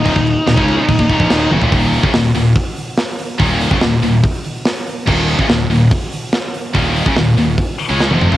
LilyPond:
<<
  \new Staff \with { instrumentName = "Lead electric guitar" } { \time 4/4 \key ees \minor \tempo 4 = 143 ees'2.~ ees'8 r8 | r1 | r1 | r1 |
r1 | }
  \new Staff \with { instrumentName = "Distorted electric guitar" } { \clef bass \time 4/4 \key ees \minor <ees, bes,>16 <ees, bes,>8 r16 <ees, bes,>16 <des aes des'>8 r16 <ees, bes,>16 <ees, bes,>16 <ees, bes,>16 <bes, f>16 <ees, bes, ees>8 <ges, des>16 <ees, bes,>16 | <ees, bes, ees>8. <ges, des>16 <ees, bes,>8 <ees, bes,>8 r2 | <ees, bes, ees>8. <ges, des>16 <ees, bes,>8 <ees, bes,>8 r2 | <ees, bes, ees>8. <ges, des>16 <ees, bes,>8 <ees, bes,>8 r2 |
<ees, bes, ees>8. <ges, des>16 <ees, bes,>8 <ees, bes,>8 r8. <des aes des'>8 <f, c f>8 <ges, des>16 | }
  \new Staff \with { instrumentName = "Distorted electric guitar" } { \clef bass \time 4/4 \key ees \minor <ees, bes,>16 <ees, bes,>8 r16 <ees, bes,>16 <des aes des'>8 r16 <ees, bes,>16 <ees, bes,>16 <ees, bes,>16 <bes, f>16 <ees, bes, ees>8 <ges, des>16 <ees, bes,>16 | <ees, bes, ees>8. <ges, des>16 <ees, bes,>8 <ees, bes,>8 r2 | <ees, bes, ees>8. <ges, des>16 <ees, bes,>8 <ees, bes,>8 r2 | <ees, bes, ees>8. <ges, des>16 <ees, bes,>8 <ees, bes,>8 r2 |
<ees, bes, ees>8. <ges, des>16 <ees, bes,>8 <ees, bes,>8 r8. <des aes des'>8 <f, c f>8 <ges, des>16 | }
  \new Staff \with { instrumentName = "Distorted electric guitar" } { \clef bass \time 4/4 \key ees \minor <ees, bes,>16 <ees, bes,>8 r16 <ees, bes,>16 <des aes des'>8 r16 <ees, bes,>16 <ees, bes,>16 <ees, bes,>16 <bes, f>16 <ees, bes, ees>8 <ges, des>16 <ees, bes,>16 | <ees, bes, ees>8. <ges, des>16 <ees, bes,>8 <ees, bes,>8 r2 | <ees, bes, ees>8. <ges, des>16 <ees, bes,>8 <ees, bes,>8 r2 | <ees, bes, ees>8. <ges, des>16 <ees, bes,>8 <ees, bes,>8 r2 |
<ees, bes, ees>8. <ges, des>16 <ees, bes,>8 <ees, bes,>8 r8. <des aes des'>8 <f, c f>8 <ges, des>16 | }
  \new Staff \with { instrumentName = "Fingered electric bass" } { \clef bass \time 4/4 \key ees \minor ees,,16 ees,,8 r16 ees,,16 des,8 r16 ees,,16 ees,,16 ees,,16 bes,,16 ees,,8 ges,,16 ees,,16 | ees,,8. ges,,16 ees,,8 ees,,8 r2 | ees,,8. ges,,16 ees,,8 ees,,8 r2 | ees,,8. ges,,16 ees,,8 ees,,8 r2 |
ees,,8. ges,,16 ees,,8 ees,,8 r8. des,8 f,,8 ges,,16 | }
  \new DrumStaff \with { instrumentName = "Drums" } \drummode { \time 4/4 <cymc bd>16 bd16 cymc8 <cymc sn>16 bd16 cymc8 <cymc bd>16 bd16 <cymc bd>16 bd16 <cymc sn>8 tommh16 tomfh16 | <hho bd>8 hho16 bd16 <hho sn>8 hho8 <hho bd>8 hho8 <hho sn>8 hho8 | <hho bd>8 hho16 bd16 <hho sn>8 hho8 <hho bd>8 hho8 <hho sn>8 hho8 | <cymc bd>8 hho16 bd16 <hho sn>8 hho8 <hho bd>8 hho8 <hho sn>8 hho8 |
<hho bd>8 hho16 bd16 <hho sn>8 hho8 <hho bd>8 hho8 sn16 tommh16 toml16 tomfh16 | }
>>